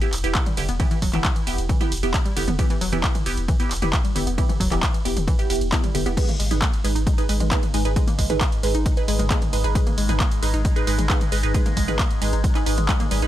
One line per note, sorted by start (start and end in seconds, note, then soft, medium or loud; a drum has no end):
0.01 0.13 B3 loud
0.01 0.13 E4 medium
0.01 0.13 G4 loud
0.01 closed hi-hat medium
0.01 ride medium
0.13 0.23 E1 loud
0.13 clap soft
0.13 open hi-hat loud
0.13 ride medium
0.18 closed hi-hat medium
0.24 0.35 E1 medium
0.24 0.43 B3 medium
0.24 0.43 E4 medium
0.24 0.43 G4 loud
0.24 closed hi-hat medium
0.24 ride medium
0.35 0.40 E4 medium
0.35 kick loud
0.35 clap loud
0.35 closed hi-hat medium
0.35 ride medium
0.46 0.54 G3 medium
0.46 closed hi-hat medium
0.46 mid tom loud
0.46 ride medium
0.57 0.68 E1 loud
0.57 0.65 D3 medium
0.57 0.69 B3 medium
0.57 0.69 E4 medium
0.57 0.69 G4 loud
0.57 open hi-hat loud
0.57 ride medium
0.69 0.80 E1 medium
0.69 0.76 B3 medium
0.69 closed hi-hat medium
0.69 ride medium
0.80 0.87 E3 loud
0.80 0.98 B3 medium
0.80 0.98 E4 medium
0.80 0.98 G4 medium
0.80 kick loud
0.80 closed hi-hat medium
0.80 ride medium
0.91 0.94 E3 loud
0.91 closed hi-hat medium
0.91 ride medium
1.02 1.13 E1 loud
1.02 1.07 F#3 loud
1.02 kick medium
1.02 open hi-hat loud
1.02 ride medium
1.13 1.24 E1 medium
1.13 1.18 E3 loud
1.13 1.25 B3 medium
1.13 1.25 E4 medium
1.13 1.25 G4 loud
1.13 clap soft
1.13 closed hi-hat soft
1.13 mid tom loud
1.13 ride medium
1.24 1.29 E4 medium
1.24 kick loud
1.24 clap loud
1.24 closed hi-hat medium
1.24 ride medium
1.36 1.41 E3 medium
1.36 closed hi-hat soft
1.36 ride medium
1.47 1.58 E1 loud
1.47 1.66 B3 medium
1.47 1.66 E4 medium
1.47 1.66 G4 loud
1.47 open hi-hat medium
1.47 ride medium
1.58 1.69 E1 medium
1.58 closed hi-hat medium
1.58 ride medium
1.69 1.77 E3 loud
1.69 kick loud
1.69 closed hi-hat medium
1.69 ride medium
1.81 1.92 B3 loud
1.81 1.92 E4 medium
1.81 1.92 G4 loud
1.81 closed hi-hat soft
1.81 mid tom loud
1.81 ride medium
1.92 2.02 E1 loud
1.92 open hi-hat loud
1.92 ride medium
1.97 closed hi-hat medium
2.03 2.14 E1 medium
2.03 2.22 B3 medium
2.03 2.22 E4 medium
2.03 2.22 G4 loud
2.03 closed hi-hat medium
2.03 ride medium
2.14 2.19 E4 medium
2.14 kick loud
2.14 clap loud
2.14 closed hi-hat medium
2.14 ride medium
2.25 2.33 G3 medium
2.25 closed hi-hat soft
2.25 ride medium
2.36 2.47 E1 loud
2.36 2.44 D3 medium
2.36 2.48 B3 medium
2.36 2.48 E4 medium
2.36 2.48 G4 medium
2.36 open hi-hat loud
2.36 ride medium
2.48 2.59 E1 medium
2.48 2.55 B3 medium
2.48 closed hi-hat medium
2.48 mid tom loud
2.48 ride medium
2.59 2.66 E3 loud
2.59 2.78 B3 medium
2.59 2.78 E4 medium
2.59 2.78 G4 medium
2.59 kick loud
2.59 closed hi-hat medium
2.59 ride medium
2.70 2.73 E3 loud
2.70 closed hi-hat medium
2.70 ride medium
2.81 2.92 E1 loud
2.81 2.86 F#3 loud
2.81 open hi-hat loud
2.81 ride medium
2.92 3.04 E1 medium
2.92 2.97 E3 loud
2.92 3.04 B3 medium
2.92 3.04 E4 medium
2.92 3.04 G4 medium
2.92 closed hi-hat medium
2.92 ride medium
3.03 3.08 E4 medium
3.03 kick loud
3.03 clap loud
3.03 closed hi-hat medium
3.03 ride medium
3.15 3.20 E3 medium
3.15 closed hi-hat medium
3.15 mid tom loud
3.15 ride medium
3.26 3.37 E1 loud
3.26 3.45 B3 medium
3.26 3.45 E4 medium
3.26 3.45 G4 loud
3.26 open hi-hat medium
3.26 ride medium
3.37 3.48 E1 medium
3.37 closed hi-hat medium
3.37 ride medium
3.48 3.56 E3 loud
3.48 kick loud
3.48 closed hi-hat medium
3.48 ride medium
3.60 3.71 B3 loud
3.60 3.71 E4 loud
3.60 3.71 G4 loud
3.60 closed hi-hat medium
3.60 ride medium
3.71 3.82 E1 medium
3.71 clap soft
3.71 open hi-hat loud
3.71 ride medium
3.77 closed hi-hat medium
3.82 3.93 E1 medium
3.82 4.01 B3 medium
3.82 4.01 E4 medium
3.82 4.01 G4 loud
3.82 closed hi-hat medium
3.82 mid tom loud
3.82 ride medium
3.93 3.98 E4 medium
3.93 kick loud
3.93 clap loud
3.93 closed hi-hat medium
3.93 ride medium
4.04 4.12 G3 medium
4.04 closed hi-hat medium
4.04 ride medium
4.15 4.26 E1 loud
4.15 4.23 D3 medium
4.15 4.27 B3 medium
4.15 4.27 E4 medium
4.15 4.27 G4 medium
4.15 open hi-hat loud
4.15 ride medium
4.27 4.38 E1 medium
4.27 4.34 B3 medium
4.27 closed hi-hat medium
4.27 ride medium
4.38 4.45 E3 loud
4.38 4.57 B3 medium
4.38 4.57 E4 medium
4.38 4.57 G4 medium
4.38 kick loud
4.38 closed hi-hat medium
4.38 ride medium
4.49 4.52 E3 loud
4.49 closed hi-hat medium
4.49 mid tom medium
4.49 ride medium
4.60 4.71 E1 loud
4.60 4.65 F#3 loud
4.60 kick medium
4.60 open hi-hat loud
4.60 ride medium
4.71 4.83 E1 medium
4.71 4.76 E3 loud
4.71 4.83 B3 medium
4.71 4.83 E4 medium
4.71 4.83 G4 loud
4.71 clap soft
4.71 closed hi-hat medium
4.71 ride medium
4.83 4.88 E4 medium
4.83 kick loud
4.83 clap loud
4.83 closed hi-hat medium
4.83 ride medium
4.94 4.99 E3 medium
4.94 closed hi-hat medium
4.94 ride medium
5.05 5.16 E1 loud
5.05 5.24 B3 medium
5.05 5.24 E4 medium
5.05 5.24 G4 loud
5.05 open hi-hat medium
5.05 ride medium
5.16 5.27 E1 medium
5.16 closed hi-hat medium
5.16 mid tom medium
5.16 ride medium
5.27 5.35 E3 loud
5.27 kick loud
5.27 closed hi-hat medium
5.27 ride medium
5.39 5.48 B3 loud
5.39 5.48 E4 medium
5.39 5.48 G4 loud
5.39 closed hi-hat medium
5.39 ride medium
5.50 5.61 E1 loud
5.50 5.69 B3 medium
5.50 5.69 E4 medium
5.50 5.69 G4 loud
5.50 open hi-hat loud
5.50 ride medium
5.56 closed hi-hat medium
5.61 5.72 E1 medium
5.61 closed hi-hat medium
5.61 ride medium
5.72 5.84 B3 loud
5.72 5.84 E4 medium
5.72 5.77 E4 medium
5.72 5.84 G4 loud
5.72 kick loud
5.72 clap loud
5.72 closed hi-hat medium
5.72 ride medium
5.84 5.91 G3 medium
5.84 closed hi-hat medium
5.84 mid tom medium
5.84 ride medium
5.95 6.05 E1 loud
5.95 6.02 D3 medium
5.95 6.04 B3 medium
5.95 6.04 E4 medium
5.95 6.04 G4 loud
5.95 open hi-hat loud
5.95 ride medium
6.06 6.17 E1 medium
6.06 6.15 B3 loud
6.06 6.13 B3 medium
6.06 6.15 E4 medium
6.06 6.15 G4 loud
6.06 closed hi-hat medium
6.06 ride medium
6.17 13.27 G#2 medium
6.17 13.27 G#3 medium
6.17 6.24 G#3 medium
6.17 6.36 D#4 medium
6.17 6.36 G#4 medium
6.17 6.36 B4 medium
6.17 kick loud
6.17 closed hi-hat loud
6.17 crash loud
6.17 ride medium
6.28 6.31 A#3 medium
6.28 closed hi-hat medium
6.28 mid tom medium
6.28 ride medium
6.39 6.50 G#1 loud
6.39 6.47 G#3 medium
6.39 open hi-hat loud
6.39 ride medium
6.51 6.62 G#1 medium
6.51 6.62 D#4 medium
6.51 6.62 G#4 medium
6.51 6.62 B4 medium
6.51 closed hi-hat medium
6.51 mid tom medium
6.51 ride medium
6.62 6.69 A#3 medium
6.62 kick loud
6.62 clap loud
6.62 closed hi-hat medium
6.62 ride medium
6.73 closed hi-hat medium
6.73 ride medium
6.84 6.95 G#1 loud
6.84 6.89 G#3 medium
6.84 7.03 D#4 medium
6.84 7.03 G#4 medium
6.84 7.03 B4 loud
6.84 open hi-hat loud
6.84 ride medium
6.95 7.06 G#1 medium
6.95 7.00 D#4 medium
6.95 closed hi-hat medium
6.95 ride medium
7.07 7.12 G#3 medium
7.07 kick loud
7.07 closed hi-hat medium
7.07 ride medium
7.18 7.27 D#4 loud
7.18 7.27 G#4 medium
7.18 7.27 B4 loud
7.18 closed hi-hat medium
7.18 ride medium
7.29 7.40 G#1 loud
7.29 7.34 G#3 medium
7.29 7.48 D#4 medium
7.29 7.48 G#4 medium
7.29 7.48 B4 loud
7.29 open hi-hat loud
7.29 ride medium
7.40 7.51 G#1 medium
7.40 7.45 G#3 medium
7.40 closed hi-hat medium
7.40 mid tom medium
7.40 ride medium
7.51 7.59 A#3 medium
7.51 7.63 D#4 loud
7.51 7.63 G#4 medium
7.51 7.63 B4 loud
7.51 kick loud
7.51 clap loud
7.51 closed hi-hat medium
7.51 ride medium
7.63 closed hi-hat medium
7.63 mid tom medium
7.63 ride medium
7.74 7.85 G#1 loud
7.74 7.79 G#3 medium
7.74 7.84 D#4 medium
7.74 7.84 G#4 medium
7.74 7.84 B4 loud
7.74 open hi-hat loud
7.74 ride medium
7.85 7.96 G#1 medium
7.85 7.95 D#4 medium
7.85 7.95 G#4 medium
7.85 7.95 B4 loud
7.85 closed hi-hat medium
7.85 ride medium
7.96 8.03 G#3 medium
7.96 8.15 D#4 medium
7.96 8.15 G#4 medium
7.96 8.15 B4 medium
7.96 kick loud
7.96 closed hi-hat loud
7.96 ride medium
8.07 8.10 A#3 medium
8.07 closed hi-hat medium
8.07 mid tom medium
8.07 ride medium
8.18 8.29 G#1 loud
8.18 8.26 G#3 medium
8.18 kick medium
8.18 open hi-hat loud
8.18 ride medium
8.30 8.41 G#1 medium
8.30 8.42 D#4 medium
8.30 8.42 G#4 medium
8.30 8.42 B4 loud
8.30 closed hi-hat medium
8.30 mid tom medium
8.30 ride medium
8.41 8.48 A#3 medium
8.41 kick loud
8.41 clap loud
8.41 closed hi-hat loud
8.41 ride medium
8.52 closed hi-hat medium
8.52 ride medium
8.63 8.74 G#1 loud
8.63 8.68 G#3 medium
8.63 8.82 D#4 medium
8.63 8.82 G#4 medium
8.63 8.82 B4 loud
8.63 open hi-hat loud
8.63 ride medium
8.75 8.86 G#1 medium
8.75 8.79 D#4 medium
8.75 closed hi-hat medium
8.75 ride medium
8.86 8.91 G#3 medium
8.86 kick loud
8.86 closed hi-hat loud
8.86 ride medium
8.97 9.06 D#4 loud
8.97 9.06 G#4 medium
8.97 9.06 B4 loud
8.97 closed hi-hat medium
8.97 ride medium
9.08 9.19 G#1 loud
9.08 9.13 G#3 medium
9.08 9.27 D#4 medium
9.08 9.27 G#4 medium
9.08 9.27 B4 loud
9.08 open hi-hat loud
9.08 ride medium
9.19 9.30 G#1 medium
9.19 9.24 G#3 medium
9.19 closed hi-hat medium
9.19 mid tom medium
9.19 ride medium
9.30 9.38 A#3 medium
9.30 9.42 D#4 medium
9.30 9.42 G#4 medium
9.30 9.42 B4 loud
9.30 kick loud
9.30 clap loud
9.30 closed hi-hat medium
9.30 ride medium
9.42 closed hi-hat medium
9.42 mid tom medium
9.42 ride medium
9.53 9.64 G#1 loud
9.53 9.58 G#3 medium
9.53 9.63 D#4 medium
9.53 9.63 G#4 medium
9.53 9.63 B4 medium
9.53 open hi-hat loud
9.53 ride medium
9.64 9.75 G#1 medium
9.64 9.74 D#4 loud
9.64 9.74 G#4 medium
9.64 9.74 B4 loud
9.64 closed hi-hat medium
9.64 ride medium
9.75 9.83 G#3 medium
9.75 9.94 D#4 medium
9.75 9.94 G#4 medium
9.75 9.94 B4 medium
9.75 kick loud
9.75 closed hi-hat loud
9.75 ride medium
9.87 9.90 A#3 medium
9.87 closed hi-hat medium
9.87 mid tom medium
9.87 ride medium
9.98 10.08 G#1 loud
9.98 10.05 G#3 medium
9.98 open hi-hat loud
9.98 ride medium
10.09 10.20 G#1 medium
10.09 10.21 D#4 medium
10.09 10.21 G#4 medium
10.09 10.21 B4 loud
10.09 closed hi-hat medium
10.09 mid tom medium
10.09 ride medium
10.20 10.27 A#3 medium
10.20 kick loud
10.20 clap loud
10.20 closed hi-hat medium
10.20 ride medium
10.31 closed hi-hat medium
10.31 ride medium
10.42 10.53 G#1 loud
10.42 10.47 G#3 medium
10.42 10.61 D#4 medium
10.42 10.61 G#4 medium
10.42 10.61 B4 loud
10.42 open hi-hat loud
10.42 ride medium
10.54 10.65 G#1 medium
10.54 10.59 D#4 medium
10.54 closed hi-hat medium
10.54 ride medium
10.65 10.70 G#3 medium
10.65 kick loud
10.65 closed hi-hat loud
10.65 ride medium
10.76 10.85 D#4 loud
10.76 10.85 G#4 medium
10.76 10.85 B4 loud
10.76 closed hi-hat medium
10.76 ride medium
10.87 10.98 G#1 loud
10.87 10.92 G#3 medium
10.87 11.06 D#4 medium
10.87 11.06 G#4 medium
10.87 11.06 B4 loud
10.87 open hi-hat loud
10.87 ride medium
10.98 11.09 G#1 medium
10.98 11.03 G#3 medium
10.98 closed hi-hat medium
10.98 mid tom medium
10.98 ride medium
11.10 11.17 A#3 medium
11.10 11.21 D#4 loud
11.10 11.21 G#4 medium
11.10 11.21 B4 loud
11.10 kick loud
11.10 clap loud
11.10 closed hi-hat medium
11.10 ride medium
11.21 closed hi-hat medium
11.21 mid tom medium
11.21 ride medium
11.32 11.43 G#1 loud
11.32 11.37 G#3 medium
11.32 11.42 D#4 medium
11.32 11.42 G#4 medium
11.32 11.42 B4 loud
11.32 open hi-hat loud
11.32 ride medium
11.43 11.54 G#1 medium
11.43 11.53 D#4 medium
11.43 11.53 G#4 medium
11.43 11.53 B4 loud
11.43 closed hi-hat medium
11.43 ride medium
11.54 11.62 G#3 medium
11.54 11.73 D#4 medium
11.54 11.73 G#4 medium
11.54 11.73 B4 medium
11.54 kick loud
11.54 closed hi-hat loud
11.54 ride medium
11.66 11.69 A#3 medium
11.66 closed hi-hat medium
11.66 mid tom loud
11.66 ride medium
11.77 11.88 G#1 loud
11.77 11.84 G#3 medium
11.77 kick medium
11.77 open hi-hat loud
11.77 ride medium
11.88 11.99 G#1 medium
11.88 12.00 D#4 medium
11.88 12.00 G#4 medium
11.88 12.00 B4 loud
11.88 closed hi-hat medium
11.88 mid tom medium
11.88 ride medium
11.99 12.07 A#3 medium
11.99 kick loud
11.99 clap loud
11.99 closed hi-hat medium
11.99 ride medium
12.11 closed hi-hat medium
12.11 ride medium
12.22 12.32 G#1 loud
12.22 12.26 G#3 medium
12.22 12.40 D#4 medium
12.22 12.40 G#4 medium
12.22 12.40 B4 loud
12.22 open hi-hat loud
12.22 ride medium
12.33 12.44 G#1 medium
12.33 12.38 D#4 medium
12.33 closed hi-hat medium
12.33 ride medium
12.44 12.49 G#3 medium
12.44 kick loud
12.44 closed hi-hat medium
12.44 ride medium
12.55 12.64 D#4 loud
12.55 12.64 G#4 medium
12.55 12.64 B4 loud
12.55 clap soft
12.55 closed hi-hat medium
12.55 ride medium
12.66 12.77 G#1 loud
12.66 12.71 D#4 medium
12.66 12.85 D#4 medium
12.66 12.85 G#4 medium
12.66 12.85 B4 loud
12.66 open hi-hat loud
12.66 ride medium
12.78 12.89 G#1 medium
12.78 12.80 G#3 medium
12.78 closed hi-hat medium
12.78 mid tom medium
12.78 ride medium
12.89 12.94 G#3 medium
12.89 13.01 D#4 loud
12.89 13.01 G#4 medium
12.89 13.01 B4 loud
12.89 kick loud
12.89 clap loud
12.89 closed hi-hat medium
12.89 ride medium
13.00 13.05 A#3 loud
13.00 closed hi-hat medium
13.00 mid tom medium
13.00 ride medium
13.11 13.22 G#1 loud
13.11 13.16 G3 medium
13.11 13.21 D#4 medium
13.11 13.21 G#4 medium
13.11 13.21 B4 loud
13.11 open hi-hat loud
13.11 ride medium
13.22 13.27 G#1 medium
13.22 13.27 D#4 medium
13.22 13.27 G#4 medium
13.22 13.27 B4 loud
13.22 closed hi-hat medium
13.22 ride medium